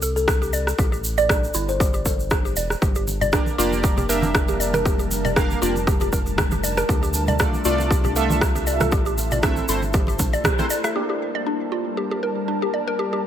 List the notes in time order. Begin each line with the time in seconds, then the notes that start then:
Already playing: C2
0.02 A4, shaker
0.16 A4, shaker
0.28 D4, kick, cross-stick, shaker
0.42 G4, shaker
0.53 D5, shaker
0.67 cross-stick, shaker
0.78 A1 G4, kick, shaker
0.92 G4, shaker
1.04 shaker
1.18 D5, shaker
1.29 D4, kick, cross-stick, shaker
1.44 shaker
1.54 G1 E4, shaker
1.69 C5, shaker
1.80 G4, kick, shaker
1.94 G4, shaker
2.05 A4, kick, shaker
2.20 shaker
2.31 D4, kick, cross-stick, shaker
2.45 G4, shaker
2.56 E1 D5, shaker
2.70 cross-stick, shaker
2.82 G1 G3 D4 G4 A#4 A5, kick, muted conga, shaker
2.95 G4, shaker
3.07 muted conga, shaker
3.21 D5, low conga, shaker
3.33 A#3 D4 G4 A#4 D5, kick, cross-stick, muted conga, shaker
3.46 high conga, shaker
3.58 F1 A#3 D4 F4 G4 A#4 D5, shaker
3.72 muted conga, shaker
3.84 G4, kick, shaker
3.98 G4, muted conga, low conga, shaker
4.09 A#3 D4 G4 A#4 E5, shaker
4.22 muted conga, high conga, shaker
4.35 D4, kick, cross-stick, shaker
4.48 G4, muted conga, shaker
4.60 D5, shaker
4.74 A#4, cross-stick, high conga, low conga, shaker
4.85 G4, kick, muted conga, shaker
4.99 G4, shaker
5.11 muted conga, shaker
5.25 D5, low conga, shaker
5.36 A#3 D4 G4 A#4 F5, kick, cross-stick, muted conga, shaker
5.50 high conga, shaker
5.62 F1 A#3 D4 F4 G4 A#4 D5, shaker
5.76 muted conga, shaker
5.87 G4, kick, shaker
6.00 G4, muted conga, shaker
6.13 A#4, kick, shaker
6.26 muted conga, shaker
6.38 D4, kick, cross-stick, high conga, low conga, shaker
6.51 G4, muted conga, high conga, shaker
6.63 D5, shaker
6.77 A#4, cross-stick, shaker
6.89 D2 F4 G4 E5, kick, muted conga, shaker
7.03 G4, shaker
7.14 muted conga, shaker
7.28 D5, low conga, shaker
7.39 A3 D4 F4 A4 D5, kick, cross-stick, muted conga, shaker
7.53 high conga, shaker
7.65 C2 A3 D4 F4 A4 D5, shaker
7.78 muted conga, shaker
7.91 G4, kick, shaker
8.04 G4, muted conga, low conga, shaker
8.16 A3 D4 F4 A4 E5, shaker
8.30 muted conga, high conga, shaker
8.41 D4, kick, cross-stick, shaker
8.55 G4, muted conga, shaker
8.67 D5, shaker
8.80 A4, cross-stick, high conga, low conga, shaker
8.92 A1 A3 E4 G4 A4 C5, kick, muted conga, shaker
9.06 G4, shaker
9.18 muted conga, shaker
9.31 D5, low conga, shaker
9.43 A3 C4 D4 E4 A4 E5, kick, cross-stick, muted conga, shaker
9.56 high conga, shaker
9.68 G1 A3 C4 E4 A4 C5, shaker
9.82 muted conga, shaker
9.93 G4, kick, high conga, shaker
10.07 G4, muted conga, shaker
10.19 A1 D4, kick, high conga, low conga, shaker
10.33 D5, muted conga, shaker
10.44 G4, kick, cross-stick, high conga, low conga, shaker
10.59 A3 C4 E4 A4 C5, muted conga, high conga, shaker
10.70 D5, shaker
10.84 E5, cross-stick, shaker
10.96 G3 A#3 D4 G4 A#4 D5 A5
11.10 G4
11.35 D5
11.46 D4
11.72 F4
11.97 G4
12.11 G4
12.23 A#4
12.48 D4
12.62 G4
12.74 D5
12.88 A#4
12.99 G4
13.13 G4